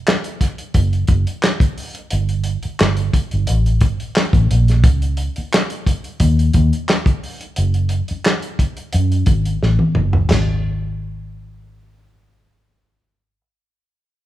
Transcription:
0.08 snare loud
0.08 clap loud
0.24 closed hi-hat medium
0.41 kick medium
0.41 snare soft
0.41 closed hi-hat medium
0.58 closed hi-hat medium
0.74 1.04 F#1 medium
0.74 kick medium
0.74 closed hi-hat medium
0.93 closed hi-hat soft
1.07 1.24 F#1 loud
1.07 kick loud
1.07 closed hi-hat medium
1.27 closed hi-hat medium
1.43 snare loud
1.43 clap medium
1.60 kick loud
1.60 closed hi-hat medium
1.78 open hi-hat medium
1.95 closed hi-hat medium
2.11 2.56 G1 loud
2.11 closed hi-hat medium
2.29 closed hi-hat soft
2.44 closed hi-hat medium
2.63 muted fingered electric bass stroke medium
2.63 closed hi-hat soft
2.80 3.09 G1 medium
2.80 snare loud
2.80 clap medium
2.97 closed hi-hat soft
3.13 kick medium
3.13 closed hi-hat medium
3.31 3.46 G1 medium
3.31 closed hi-hat soft
3.47 3.83 A1 loud
3.47 closed hi-hat medium
3.66 closed hi-hat soft
3.81 3.97 G1 loud
3.81 kick loud
3.81 closed hi-hat medium
4.00 closed hi-hat soft
4.16 snare loud
4.16 clap medium
4.33 4.47 A1 medium
4.33 kick loud
4.33 closed hi-hat medium
4.51 4.85 A#1 medium
4.51 closed hi-hat medium
4.68 snare soft
4.68 closed hi-hat medium
4.84 5.28 C#2 loud
4.84 kick loud
4.84 closed hi-hat medium
5.02 closed hi-hat soft
5.17 closed hi-hat medium
5.36 muted fingered electric bass stroke medium
5.36 closed hi-hat soft
5.54 snare loud
5.54 clap loud
5.70 closed hi-hat medium
5.86 kick medium
5.86 closed hi-hat medium
6.04 closed hi-hat soft
6.20 6.49 D#2 loud
6.20 kick medium
6.20 closed hi-hat medium
6.39 closed hi-hat soft
6.53 6.70 D#2 loud
6.53 kick medium
6.53 closed hi-hat medium
6.73 closed hi-hat soft
6.89 snare loud
6.89 clap medium
7.06 kick loud
7.06 closed hi-hat soft
7.23 open hi-hat medium
7.41 closed hi-hat medium
7.56 8.01 F#1 loud
7.56 closed hi-hat medium
7.74 closed hi-hat soft
7.89 closed hi-hat medium
8.08 muted fingered electric bass stroke medium
8.08 closed hi-hat soft
8.25 snare loud
8.25 clap loud
8.42 closed hi-hat soft
8.59 kick medium
8.59 closed hi-hat medium
8.77 closed hi-hat soft
8.93 9.22 F#2 loud
8.93 closed hi-hat medium
9.12 closed hi-hat soft
9.26 9.56 G#1 loud
9.26 kick loud
9.26 closed hi-hat medium
9.46 closed hi-hat soft
9.63 9.77 A1 medium
9.63 snare medium
9.79 high tom medium
9.95 10.25 F#1 loud
9.95 mid tom loud
10.13 floor tom loud
10.29 13.40 G#1 loud
10.29 snare loud
10.29 floor tom loud
10.29 splash medium

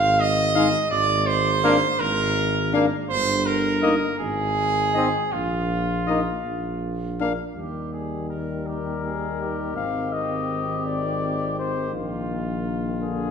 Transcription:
0.00 0.74 G#1 medium
0.00 0.21 F5 loud
0.20 0.90 D#5 loud
0.55 0.69 G#3 medium
0.55 0.69 D#4 medium
0.55 0.68 F5 medium
0.91 1.82 G#1 medium
0.91 1.28 D5 loud
1.27 2.01 C5 loud
1.64 1.77 A#3 medium
1.64 1.77 D4 medium
1.64 1.77 F5 medium
2.00 2.92 G#1 medium
2.00 2.82 A#4 loud
2.73 2.87 A#3 medium
2.73 2.86 D4 medium
2.73 2.86 F5 medium
3.09 4.02 G1 medium
3.09 3.48 C5 loud
3.46 4.18 A#4 medium
3.82 3.96 A#3 medium
3.82 3.96 D#4 medium
3.82 3.96 D#5 medium
4.19 5.14 G#1 medium
4.19 5.34 G#4 loud
4.93 5.09 C4 medium
4.93 5.08 D#4 medium
4.93 5.07 D#5 medium
5.33 6.27 A#1 medium
5.33 7.21 F4 medium
6.07 6.22 A#3 medium
6.07 6.21 D#4 medium
6.07 6.20 D#5 medium
6.45 7.39 A#1 medium
7.20 7.34 A#3 medium
7.20 7.34 D4 medium
7.20 7.33 F5 medium
7.56 9.77 D#2 soft
7.56 13.02 D#3 soft
7.56 9.72 G3 soft
7.56 7.91 G4 soft
7.93 8.29 G#4 soft
8.30 8.68 A#4 soft
8.66 9.03 G4 soft
8.66 9.72 A#4 soft
9.04 9.42 G#4 soft
9.41 11.93 G4 medium
9.76 11.95 G#1 soft
9.76 11.89 C4 medium
9.76 10.14 F5 medium
10.13 10.85 D#5 medium
10.86 11.57 D5 medium
11.59 11.94 C5 medium
11.93 13.31 A#1 medium
11.93 13.31 A#3 medium
11.93 13.31 F4 medium
13.01 13.31 D3 medium
13.01 13.31 G#4 medium

